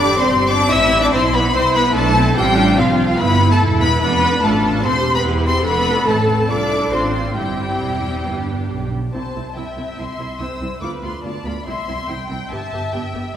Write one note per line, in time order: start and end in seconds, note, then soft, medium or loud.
0.00 0.28 E1 medium
0.00 0.28 C4 medium
0.00 0.18 D4 loud
0.00 0.71 G4 medium
0.00 0.19 D5 loud
0.00 0.19 D6 loud
0.19 0.50 C4 medium
0.19 0.50 C5 loud
0.19 0.50 C6 loud
0.29 0.71 G1 loud
0.29 1.11 C4 medium
0.50 0.71 D4 loud
0.50 0.59 D5 loud
0.50 0.71 D6 loud
0.70 1.12 A1 loud
0.70 1.11 E4 medium
0.70 1.02 E4 loud
0.70 1.01 E5 loud
0.70 1.02 E6 loud
1.02 1.13 D4 loud
1.02 1.13 D5 loud
1.02 1.07 D6 loud
1.12 1.54 B1 loud
1.12 1.21 C4 loud
1.12 1.53 E4 medium
1.12 1.21 C5 loud
1.12 1.33 C6 loud
1.33 1.54 B3 loud
1.33 1.42 B4 loud
1.33 1.54 B5 loud
1.54 1.95 C2 medium
1.54 1.62 C4 loud
1.54 1.94 E4 medium
1.54 1.75 C5 loud
1.54 1.75 C6 loud
1.75 1.95 B3 loud
1.75 1.96 B4 loud
1.75 1.95 B5 loud
1.95 2.35 B1 loud
1.95 2.36 A3 loud
1.95 2.16 D4 medium
1.95 2.36 E4 medium
1.95 2.36 A4 loud
1.95 2.35 A5 loud
2.16 2.35 C4 medium
2.36 2.77 A1 loud
2.36 2.77 G3 loud
2.36 2.56 C4 medium
2.36 2.77 F4 medium
2.36 2.78 G4 loud
2.36 2.77 G5 loud
2.57 2.77 D4 loud
2.78 3.19 C2 loud
2.78 3.19 F3 loud
2.78 3.19 C4 medium
2.78 3.18 F4 medium
2.78 3.19 F4 medium
2.78 3.19 F5 loud
3.19 3.60 G1 loud
3.19 3.50 B3 loud
3.19 3.60 B3 medium
3.19 3.60 E4 medium
3.19 3.50 B4 loud
3.19 3.51 B5 loud
3.50 3.58 A3 medium
3.50 3.81 A4 loud
3.50 3.59 A5 loud
3.61 4.01 E1 medium
3.61 4.02 E4 medium
3.81 4.01 B3 medium
3.81 4.00 B4 loud
3.81 4.01 B5 loud
4.02 4.42 F1 loud
4.02 4.42 B3 loud
4.02 4.42 D4 medium
4.02 4.42 B4 loud
4.02 4.42 B5 loud
4.43 4.84 A1 medium
4.43 4.83 A3 medium
4.43 4.83 D4 medium
4.43 4.84 F4 medium
4.43 4.84 A4 medium
4.43 4.85 A5 loud
4.84 5.25 E1 medium
4.84 4.92 C4 medium
4.84 5.25 C4 medium
4.84 5.24 G4 medium
4.84 5.14 C5 loud
4.84 5.15 C6 loud
5.14 5.45 B3 medium
5.14 5.45 B4 medium
5.14 5.23 B5 loud
5.25 5.66 E2 medium
5.25 5.66 E4 medium
5.25 5.65 G4 medium
5.46 5.66 C4 medium
5.46 5.66 C5 loud
5.46 5.66 C6 loud
5.66 6.06 F1 medium
5.66 6.06 B3 loud
5.66 6.07 D4 medium
5.66 6.48 A4 medium
5.66 6.06 B4 loud
5.66 6.07 B5 loud
6.07 6.48 A1 medium
6.07 6.48 A3 medium
6.07 6.49 C4 medium
6.07 6.48 A4 medium
6.07 6.50 A5 loud
6.49 6.91 C2 medium
6.49 6.91 D4 medium
6.49 6.70 F4 medium
6.49 6.91 A4 medium
6.49 6.91 D5 loud
6.49 6.92 D6 loud
6.70 6.91 E4 medium
6.91 7.35 A1 medium
6.91 7.36 C4 medium
6.91 7.14 D4 medium
6.91 7.36 F4 medium
6.91 7.35 C5 medium
6.91 7.36 C6 medium
7.15 7.35 C4 medium
7.35 7.80 G1 medium
7.35 8.91 G3 medium
7.35 8.24 C4 medium
7.35 8.25 E4 medium
7.35 8.88 G4 medium
7.35 8.88 G5 medium
7.81 8.25 E1 medium
8.25 8.69 G1 medium
8.25 8.93 B3 medium
8.25 8.93 D4 medium
8.69 9.12 B1 medium
9.12 9.21 C2 soft
9.12 9.22 C4 soft
9.12 9.22 E4 soft
9.12 9.53 C5 soft
9.12 9.52 A5 medium
9.34 9.42 C2 soft
9.34 9.43 C2 soft
9.34 9.43 C4 soft
9.34 9.43 E4 soft
9.56 9.64 C2 soft
9.56 9.64 C4 soft
9.56 9.64 E4 soft
9.56 10.39 E5 medium
9.56 9.98 G5 medium
9.76 9.84 C2 soft
9.76 9.85 C2 soft
9.76 9.85 C4 soft
9.76 9.85 E4 soft
9.98 10.06 C2 soft
9.98 10.06 C4 soft
9.98 10.06 E4 soft
9.98 10.40 C6 medium
10.19 10.27 C2 soft
10.19 10.27 C4 soft
10.19 10.27 E4 soft
10.40 10.48 C2 soft
10.40 10.48 C4 soft
10.40 10.48 E4 soft
10.40 10.82 C5 soft
10.40 10.82 E6 medium
10.61 10.69 C2 soft
10.61 10.69 C4 soft
10.61 10.69 E4 soft
10.81 10.90 D2 medium
10.81 10.89 B3 soft
10.81 10.90 F4 soft
10.81 11.23 B4 soft
10.81 10.90 D6 medium
11.03 11.11 D2 soft
11.03 11.11 B3 soft
11.03 11.11 F4 soft
11.03 11.24 C6 medium
11.24 11.32 D2 soft
11.24 11.32 B3 soft
11.24 11.32 F4 soft
11.24 11.65 D5 medium
11.24 11.45 A5 medium
11.45 11.53 D2 soft
11.45 11.53 B3 soft
11.45 11.53 F4 soft
11.45 11.66 B5 medium
11.65 11.74 C2 medium
11.65 11.75 C4 soft
11.65 11.74 E4 soft
11.65 12.08 E5 medium
11.65 12.28 C6 medium
11.87 11.95 C2 soft
11.87 11.95 C2 medium
11.87 11.95 C4 soft
11.87 11.95 E4 soft
12.09 12.17 C2 medium
12.09 12.17 C4 soft
12.09 12.17 E4 soft
12.09 12.51 G5 medium
12.29 12.38 C2 soft
12.29 12.38 C4 soft
12.29 12.38 E4 soft
12.29 12.51 G5 medium
12.51 12.59 G1 medium
12.51 12.59 G2 medium
12.51 12.60 B3 medium
12.51 12.59 G4 soft
12.51 13.33 E5 medium
12.51 12.93 A5 medium
12.72 12.80 G1 medium
12.72 12.81 G2 medium
12.72 12.81 B3 soft
12.72 12.80 G4 soft
12.93 13.01 G1 medium
12.93 13.01 G2 medium
12.93 13.01 B3 soft
12.93 13.01 G4 soft
12.93 13.34 G5 medium
13.13 13.21 G1 medium
13.13 13.22 G2 medium
13.13 13.22 B3 soft
13.13 13.22 G4 medium